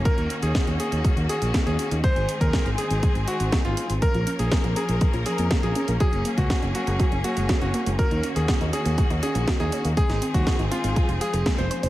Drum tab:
HH |xxxxxxxxxxxxxxxx|xxxxxxxxxxxxxxxx|xxxxxxxxxxxxxxxx|xxxxxxxxxxxxxxxx|
SD |----o-------o---|----o-------o---|----o-------o---|----o-------o---|
BD |o---o---o---o---|o--oo---o---o---|o---o---o---o---|o--oo---o---o---|

HH |xxxxxxxxxxxxxxxx|xxxxxxxxxxxxxxxx|
SD |----o-------o---|-o--o-------o---|
BD |o---o---o---o---|o--oo---o---o---|